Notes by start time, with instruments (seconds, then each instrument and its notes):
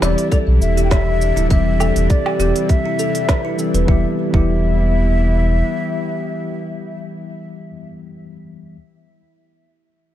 Already playing: synth drone C3 G3 D4 E4, tine electric piano G3 C4 G4
0.00 sub bass E1, tine electric piano E3 G3 C4, bansuri D5, kalimba E5, snare, shaker
0.04 tine electric piano G4
0.18 open hi-hat, shaker
0.31 kalimba A4, bansuri D5, kick, open hi-hat, shaker
0.48 sub bass B1
0.61 sub bass E1, bansuri E5, shaker
0.77 kalimba G4, open hi-hat, shaker
0.84 bansuri G5
0.91 kalimba G4, bansuri E5, kick, snare, open hi-hat, shaker
1.21 shaker
1.36 sub bass D1, kalimba E4, open hi-hat, shaker
1.49 sub bass E1, tine electric piano E3 G3 C4, bansuri E5, kalimba E5, kick, open hi-hat, shaker
1.53 tine electric piano G4
1.80 kalimba A4, low woodblock, shaker
1.96 sub bass E1, open hi-hat, shaker
2.10 bansuri D5, kick, open hi-hat, shaker
2.26 kalimba G4, low woodblock
2.38 sub bass E1, tine electric piano E3 G3 C4, kalimba G4, shaker
2.42 tine electric piano G4
2.56 open hi-hat, shaker
2.69 bansuri E5, kick, open hi-hat, shaker
2.86 kalimba E4
2.99 kalimba A4, shaker
3.15 open hi-hat, shaker
3.29 kalimba B4, kick, snare, open hi-hat, shaker
3.45 kalimba E4
3.58 tine electric piano E3 G3 C4 A4, shaker
3.74 sub bass E1, kalimba B4, open hi-hat, shaker
3.85 sub bass E1, tine electric piano E3 G3, synth drone E3 B3 E4 G4, kalimba E4, bansuri E5, kick
3.89 tine electric piano B3 G4
4.31 sub bass E1, tine electric piano E3 G3 B3, kalimba E4, bansuri E5, kick
4.37 tine electric piano G4